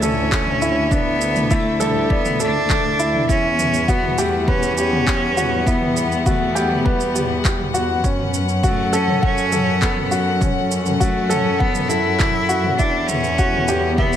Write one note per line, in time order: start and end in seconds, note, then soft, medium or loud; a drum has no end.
0.00 3.26 D2 medium
0.00 3.29 D3 medium
0.00 3.29 A3 medium
0.00 0.43 B3 medium
0.00 0.94 C#4 loud
0.00 0.62 E4 loud
0.00 4.20 E4 medium
0.00 0.02 A4 loud
0.00 0.19 A4 medium
0.00 2.10 D5 medium
0.00 4.72 E5 medium
0.00 mid tom medium
0.00 shaker medium
0.32 0.60 A4 medium
0.32 kick loud
0.32 clap medium
0.32 shaker soft
0.47 mid tom medium
0.62 0.78 E4 loud
0.62 shaker medium
0.91 1.53 B3 loud
0.91 1.08 D4 medium
0.91 kick loud
0.91 mid tom medium
0.91 shaker soft
1.21 shaker medium
1.36 mid tom medium
1.36 shaker soft
1.51 1.82 A3 loud
1.51 1.79 E4 loud
1.51 kick loud
1.51 shaker soft
1.80 2.12 G3 medium
1.80 2.08 A4 loud
1.80 mid tom medium
1.80 shaker medium
2.10 2.42 B3 loud
2.10 2.27 D5 medium
2.10 kick loud
2.25 mid tom medium
2.25 shaker soft
2.40 3.29 D4 loud
2.40 2.57 A4 medium
2.40 shaker medium
2.70 2.98 A4 medium
2.70 kick loud
2.70 clap medium
2.70 mid tom medium
2.70 shaker soft
2.99 3.16 E4 loud
2.99 shaker medium
3.14 mid tom medium
3.28 8.01 E2 medium
3.28 8.04 E3 medium
3.28 3.91 C#4 loud
3.28 3.46 E4 medium
3.28 kick loud
3.28 shaker soft
3.50 8.04 G3 medium
3.50 8.79 B3 medium
3.59 mid tom medium
3.59 shaker medium
3.74 shaker soft
3.78 14.17 F#5 medium
3.88 4.20 B3 loud
3.88 4.16 F#4 loud
3.88 kick loud
3.88 shaker soft
4.03 mid tom medium
4.18 4.49 A3 medium
4.18 4.46 G4 loud
4.18 shaker medium
4.48 4.76 C#4 loud
4.48 4.65 B4 medium
4.48 kick loud
4.48 mid tom medium
4.63 shaker soft
4.77 5.68 C#4 loud
4.77 4.94 G4 medium
4.77 shaker medium
4.93 mid tom medium
5.07 5.35 G4 medium
5.07 kick loud
5.07 clap medium
5.07 shaker soft
5.37 5.54 F#4 loud
5.37 mid tom medium
5.37 shaker medium
5.67 6.26 B3 loud
5.67 5.84 E4 medium
5.67 kick loud
5.67 shaker soft
5.82 mid tom medium
5.97 shaker medium
6.12 shaker soft
6.26 6.87 A3 loud
6.26 6.54 F#4 medium
6.26 kick loud
6.26 mid tom medium
6.26 shaker soft
6.55 6.84 G4 loud
6.55 shaker medium
6.71 mid tom medium
6.85 7.74 G3 medium
6.85 7.02 B4 medium
6.85 kick loud
7.00 shaker soft
7.15 7.32 G4 medium
7.15 mid tom medium
7.15 shaker medium
7.45 7.73 G4 medium
7.45 kick loud
7.45 clap medium
7.45 shaker soft
7.59 mid tom medium
7.74 7.91 F#4 loud
7.74 shaker medium
8.04 12.76 F#2 loud
8.04 12.80 F#3 medium
8.04 8.21 C#4 medium
8.04 kick loud
8.04 shaker soft
8.11 14.17 C#4 medium
8.19 mid tom medium
8.34 shaker medium
8.49 shaker soft
8.63 8.95 A3 loud
8.63 8.92 F#4 loud
8.63 kick loud
8.63 mid tom medium
8.63 shaker soft
8.82 14.17 A4 medium
8.93 9.22 C#4 loud
8.93 9.21 A4 loud
8.93 shaker medium
9.08 mid tom medium
9.22 9.83 C#4 loud
9.22 9.39 F#5 medium
9.22 kick loud
9.38 shaker soft
9.52 9.69 A4 medium
9.52 mid tom medium
9.52 shaker medium
9.82 10.27 B3 medium
9.82 10.10 A4 medium
9.82 kick loud
9.82 clap medium
9.82 shaker soft
9.97 mid tom medium
10.11 10.28 F#4 loud
10.11 shaker medium
10.41 10.58 C#4 medium
10.41 kick loud
10.41 mid tom medium
10.41 shaker soft
10.71 shaker medium
10.86 mid tom medium
10.86 shaker soft
11.00 11.31 A3 medium
11.00 11.29 F#4 loud
11.00 kick loud
11.00 shaker soft
11.29 11.60 C#4 loud
11.29 11.58 A4 loud
11.29 mid tom medium
11.29 shaker medium
11.59 11.90 B3 loud
11.59 11.77 F#5 medium
11.59 kick loud
11.75 mid tom medium
11.75 shaker soft
11.88 12.77 E4 loud
11.88 12.07 A4 medium
11.88 shaker medium
12.19 12.48 A4 medium
12.19 kick loud
12.19 clap medium
12.19 mid tom medium
12.19 shaker soft
12.49 12.66 F#4 loud
12.49 shaker medium
12.64 mid tom medium
12.77 14.17 E2 loud
12.77 14.17 E3 medium
12.77 13.09 D4 loud
12.77 12.96 E4 medium
12.77 kick medium
12.77 shaker soft
12.93 14.17 B3 medium
13.07 13.96 C#4 loud
13.07 mid tom medium
13.07 shaker medium
13.24 shaker soft
13.39 14.17 G3 medium
13.39 13.67 F#4 loud
13.39 kick medium
13.39 shaker soft
13.54 mid tom medium
13.68 13.97 G4 loud
13.68 shaker medium
13.96 14.17 B3 loud
13.96 14.15 E5 medium
13.96 kick loud
13.96 mid tom medium
14.13 shaker soft